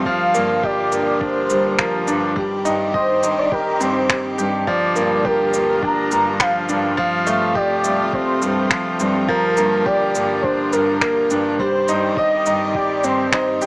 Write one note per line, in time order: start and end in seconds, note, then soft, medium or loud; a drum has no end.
0.00 4.62 G3 medium
0.00 2.32 F4 medium
0.06 2.34 D3 medium
0.06 0.33 F3 loud
0.06 2.34 A#3 medium
0.06 0.66 F5 loud
0.06 kick loud
0.34 0.56 G2 loud
0.34 0.62 A#3 loud
0.34 shaker medium
0.63 0.91 G4 loud
0.63 1.24 D5 loud
0.63 kick loud
0.92 1.14 G2 medium
0.92 1.19 A#3 medium
0.92 shaker medium
1.21 1.48 D4 medium
1.21 1.78 C5 loud
1.21 kick loud
1.50 1.72 G2 medium
1.50 1.77 G3 medium
1.50 shaker medium
1.78 2.06 F3 medium
1.78 2.19 A#4 medium
1.78 finger snap medium
1.78 kick loud
2.07 2.30 G2 loud
2.07 2.35 D4 medium
2.07 shaker medium
2.36 4.65 D#3 medium
2.36 2.63 G3 loud
2.36 4.65 C4 medium
2.36 4.65 G4 medium
2.36 kick loud
2.65 2.87 G2 loud
2.65 2.93 D#4 loud
2.65 shaker medium
2.94 3.40 C5 loud
2.94 3.21 D#5 loud
2.94 kick loud
3.23 3.45 G2 medium
3.23 3.50 D#4 medium
3.23 shaker medium
3.38 3.54 D5 loud
3.52 3.79 G4 medium
3.52 3.83 A#4 loud
3.52 kick loud
3.80 4.02 G2 medium
3.80 4.08 C4 medium
3.80 4.39 C5 loud
3.80 shaker medium
4.10 4.37 G3 medium
4.10 finger snap medium
4.10 kick loud
4.38 4.60 G2 loud
4.38 4.66 G4 medium
4.38 shaker medium
4.67 6.95 D3 medium
4.67 4.95 F3 loud
4.67 6.95 G3 medium
4.67 6.95 A#3 medium
4.67 11.55 F4 medium
4.67 5.26 D5 loud
4.67 kick loud
4.96 5.18 G2 loud
4.96 5.23 A#3 loud
4.96 shaker medium
5.25 5.52 G4 loud
5.25 5.84 A#4 loud
5.25 kick loud
5.54 5.75 G2 medium
5.54 5.81 A#3 medium
5.54 shaker medium
5.82 6.10 D4 medium
5.82 6.42 A#5 loud
5.82 kick loud
6.11 6.33 G2 medium
6.11 6.39 G3 medium
6.11 shaker medium
6.40 6.68 F3 medium
6.40 6.97 F5 loud
6.40 finger snap medium
6.40 kick loud
6.69 6.91 G2 loud
6.69 6.96 D4 medium
6.69 shaker medium
6.97 9.26 C3 medium
6.97 7.25 F3 loud
6.97 11.55 G3 medium
6.97 9.26 A3 medium
6.97 7.58 F5 loud
6.97 kick loud
7.27 7.48 G2 loud
7.27 7.54 A3 loud
7.27 shaker medium
7.55 7.83 G4 loud
7.55 8.15 D5 loud
7.55 kick loud
7.84 8.06 G2 medium
7.84 8.12 A3 medium
7.84 shaker medium
8.13 8.41 C4 medium
8.13 9.00 C5 loud
8.13 kick loud
8.42 8.64 G2 medium
8.42 8.69 G3 medium
8.42 shaker medium
8.71 8.98 F3 medium
8.71 finger snap medium
8.71 kick loud
9.00 9.21 G2 loud
9.00 9.27 C4 medium
9.00 shaker medium
9.28 11.57 D3 medium
9.28 9.56 F3 loud
9.28 11.57 A#3 medium
9.28 9.87 A#4 loud
9.28 kick loud
9.57 9.79 G2 loud
9.57 9.85 A#3 loud
9.57 shaker medium
9.85 10.13 G4 medium
9.85 10.44 D5 loud
9.85 kick loud
10.15 10.37 G2 medium
10.15 10.43 A#3 medium
10.15 shaker medium
10.42 10.71 D4 medium
10.42 10.73 C5 loud
10.42 kick loud
10.72 10.95 G2 medium
10.72 11.00 G3 medium
10.72 11.30 A#4 medium
10.72 shaker medium
11.01 11.29 A#3 loud
11.01 finger snap medium
11.01 kick loud
11.30 11.52 G2 loud
11.30 11.58 D4 medium
11.30 shaker medium
11.59 13.66 D#3 medium
11.59 13.66 G3 medium
11.59 11.87 G3 loud
11.59 13.66 C4 medium
11.59 13.66 G4 medium
11.59 12.19 C5 loud
11.59 kick loud
11.88 12.10 G2 loud
11.88 12.16 D#4 loud
11.88 shaker medium
12.17 12.77 D#5 loud
12.17 12.45 D#5 loud
12.17 kick loud
12.46 12.68 G2 medium
12.46 12.74 D#4 medium
12.46 shaker medium
12.75 13.03 G4 medium
12.75 13.05 D5 loud
12.75 kick loud
13.04 13.25 G2 medium
13.04 13.31 C4 medium
13.04 13.61 C5 loud
13.04 shaker medium
13.32 13.60 D#4 loud
13.32 finger snap medium
13.32 kick loud
13.61 13.66 G2 loud
13.61 13.66 G4 medium
13.61 shaker medium